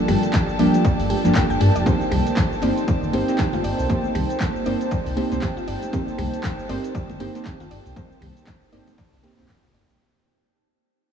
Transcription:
Already playing: F3 G3 A#3 D4 F4 G4 A4 D5 G5 A5
0.08 G1 G3, closed hi-hat, open hi-hat, low conga
0.23 closed hi-hat, shaker
0.33 kick, snare, clap, closed hi-hat, muted conga, shaker
0.49 shaker
0.59 D1 F3 G3 A#3 D4 G4 D5, closed hi-hat, open hi-hat
0.74 closed hi-hat, muted conga, shaker
0.85 D5, kick, closed hi-hat, shaker
0.99 G1, open hi-hat, shaker
1.10 G4, closed hi-hat, open hi-hat, high conga
1.24 G1 F3 G3 A#3 D4 G4, snare, closed hi-hat, muted conga, shaker
1.35 G5, kick, snare, clap, closed hi-hat, shaker
1.50 G1 G5, shaker
1.60 G2 G4, closed hi-hat, open hi-hat, muted conga
1.76 F1 D5, closed hi-hat, shaker
1.85 A#3 C4 D#4 G4 C5 G5, kick, closed hi-hat, shaker
2.01 closed hi-hat, shaker
2.12 C2 G3, closed hi-hat, open hi-hat, low conga
2.26 closed hi-hat, muted conga, shaker
2.37 kick, snare, clap, closed hi-hat, shaker
2.53 shaker
2.62 G1 A#3 C4 D#4 G4 C5 D5, closed hi-hat, open hi-hat, muted conga
2.78 closed hi-hat, shaker
2.88 D5, kick, closed hi-hat, shaker
2.98 C5
3.03 low conga, shaker
3.13 G1 A#3 C4 D#4 G4 C5, closed hi-hat, open hi-hat, muted conga
3.28 A#3 C4 D#4 G4 C5, snare, closed hi-hat, shaker
3.38 G4, kick, snare, clap, closed hi-hat, shaker
3.53 F4, snare, muted conga, low conga, shaker
3.64 G1 D5, closed hi-hat, open hi-hat
3.79 C2, open hi-hat, shaker
3.89 A#3 C4 D#4 G4 C5, kick, closed hi-hat, shaker
4.04 muted conga, shaker
4.15 C2 G3, closed hi-hat, open hi-hat, low conga
4.30 closed hi-hat, shaker
4.40 kick, snare, clap, closed hi-hat, muted conga, shaker
4.56 shaker
4.65 G1 A#3 C4 D#4 G4 C5 D5, closed hi-hat, open hi-hat
4.81 closed hi-hat, shaker
4.91 D5, kick, closed hi-hat, muted conga, shaker
5.06 C2, open hi-hat, shaker
5.16 A#3 C4 D#4 G4 C5, closed hi-hat, open hi-hat, high conga
5.31 C2 A#3 C4 D#4 G4 C5, snare, closed hi-hat, muted conga, shaker
5.42 G4, kick, snare, clap, closed hi-hat, shaker
5.57 F4, shaker
5.68 G1 D5, closed hi-hat, open hi-hat
5.82 closed hi-hat, muted conga, shaker
5.92 A#3 C4 D#4 G4 C5, kick, closed hi-hat, shaker
6.08 closed hi-hat, shaker
6.18 C2 G3, closed hi-hat, open hi-hat, muted conga, low conga
6.33 closed hi-hat, shaker
6.44 kick, snare, clap, closed hi-hat, shaker
6.59 shaker
6.69 G1 A#3 C4 D#4 G4 C5 D5, closed hi-hat, open hi-hat, muted conga
6.84 closed hi-hat, shaker
6.95 D5, kick, closed hi-hat, shaker
7.10 muted conga, low conga, shaker
7.20 G1 A#3 C4 D#4 G4 C5, closed hi-hat, open hi-hat
7.34 A#3 C4 D#4 G4 C5, snare, closed hi-hat, shaker
7.45 G4, kick, snare, clap, closed hi-hat, shaker
7.60 F4, snare, muted conga, low conga, shaker
7.71 G1 D5, closed hi-hat, open hi-hat
7.86 C2, open hi-hat, shaker
7.95 A#3 C4 D#4 G4 C5, kick, closed hi-hat, muted conga, shaker
8.12 shaker
8.21 C2 G3, closed hi-hat, open hi-hat, low conga
8.37 closed hi-hat, shaker
8.47 kick, snare, clap, closed hi-hat, muted conga, shaker
8.63 shaker
8.72 G1 A#3 C4 D#4 G4 C5 D5, closed hi-hat, open hi-hat
8.87 closed hi-hat, muted conga, shaker
8.98 D5, kick, snare, closed hi-hat, shaker
9.13 C2, open hi-hat, shaker
9.23 A#3 C4 D#4 G4 C5, closed hi-hat, open hi-hat, high conga
9.38 C2 A#3 C4 D#4 G4 C5, closed hi-hat, muted conga, shaker
9.49 G4, kick, clap, closed hi-hat, shaker
9.64 C2 F4, snare, shaker
9.74 G1 D5, closed hi-hat, open hi-hat, muted conga
9.89 A#1, closed hi-hat, shaker

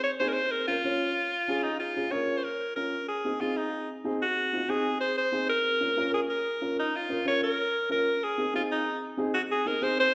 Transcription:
0.04 C#5
0.20 C4 D#4 G#4 C5
0.28 A#4
0.33 C5
0.51 A#4
0.67 C#4 F4 A#4
0.84 C#4 F4 C#5
1.48 C#4 F4 G#4
1.63 D#4
1.80 F4
1.96 C#4 F4 G#4
2.12 C#4 F4 A#4 C#5
2.37 C5
2.44 A#4
2.76 C#4 F4 A#4
3.08 G#4
3.25 C4 D#4 G#4
3.40 C4 D#4 F4 G#4
3.57 D#4
4.04 C4 D#4 G#4
4.22 F#4
4.53 C4 D#4 F4
4.68 C4 D#4 G#4
5.01 C5
5.18 C5
5.32 C4 D#4 G#4
5.49 A#4
5.81 C#4 F4 A#4
5.97 C#4 F4 A#4
6.14 G#4
6.30 A#4
6.62 C#4 F4 A#4
6.79 D#4
6.96 F4
7.09 C#4 F4 A#4
7.25 C#4 F4 A#4 C#5
7.43 A#4
7.89 C#4 F4 A#4
8.24 G#4
8.38 C4 D#4 G#4
8.54 C4 D#4 F4 G#4
8.72 D#4
9.17 C4 D#4 G#4
9.34 F#4
9.51 G#4
9.66 C4 D#4 G#4 A#4
9.81 C4 D#4 G#4 C5
10.00 C5

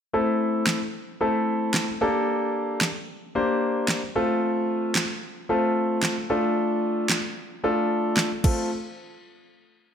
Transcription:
0.13 A3 C4 E4 A4
0.67 snare, clap
1.21 A3 C4 E4 A4
1.74 snare, clap
2.01 A#3 D4 G4 A4
2.81 snare, clap
3.35 A#3 D4 G4 C5
3.88 snare, clap
4.15 A3 C4 F4 A4
4.95 snare, clap
5.49 A3 C4 F4 A4
6.03 snare, clap
6.30 A3 D4 F4 A4
7.10 snare, clap
7.64 A3 D4 F4 A4
8.17 snare, clap
8.44 A3 C4 F4 A4, kick, crash

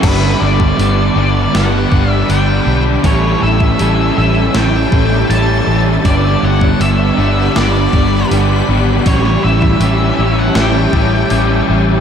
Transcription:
0.01 G1 G2 D3 G3 B3 D4 G4 B4 D5 B5, kick, open hi-hat, crash
0.39 G1 B3 D4 G4 D5
0.60 kick
0.76 G1 D3 G3 B3 D4 G4, open hi-hat
1.14 G1 B3 D4 G4
1.19 D5
1.52 G1 G2 D3 G3 B3 D4 G4 F#5, snare, open hi-hat
1.90 G1 B3 D4 G4, kick
2.12 E5
2.27 G1 D3 G3 B3 D4 G4 G5, open hi-hat
2.64 B1 B3 D4 G4
3.03 A1 A2 E3 G3 C#4 G4 A4 C#5 E5 A5, kick, open hi-hat
3.07 E4
3.40 A1 G3 C#4 A4 E5
3.60 kick
3.78 A1 E3 G3 C#4 A4, open hi-hat
3.83 E4
4.16 A1 G3 C#4 E4 A4 E5
4.55 A1 A2 E3 G3 C#4 E4 A4 G5, snare, open hi-hat
4.91 A1 G3 C#4 A4, kick
5.30 A1 E3 G3 C#4 E4 A4 A5, open hi-hat
5.66 A1 G3 C#4 A4
6.04 G1 G2 D3 G3 B3 D4 G4 D5 F#5 B5, kick, open hi-hat
6.43 G1 G3 B3 D4 G4 F#5
6.61 kick
6.79 G1 D3 G3 B3 D4 G4 E5, open hi-hat
7.16 G1 G3 B3 D4 G4
7.55 G1 G2 D3 G3 B3 D4 G4 D5, snare, open hi-hat
7.92 G1 G3 B3 D4 G4, kick
8.30 G1 D3 G3 B3 D4 G4, open hi-hat
8.68 G#1 G3 B3 D4 G4
9.05 A1 A2 E3 G3 C#4 E4 G4 C#5 E5 A5, kick, open hi-hat
9.25 snare
9.42 A1 G3 C#4 G4 E5
9.62 kick
9.80 A1 E3 G3 C#4 G4, open hi-hat
9.84 E4
10.18 A1 G3 C#4 E4 G4
10.39 F#5
10.54 A1 A2 E3 G3 C#4 G4 G5, snare, open hi-hat
10.60 E4
10.92 A1 G3 C#4 G4, kick
11.28 A1 E3 G3 C#4 G4, open hi-hat
11.34 E4
11.67 A1 G3 C#4 G4

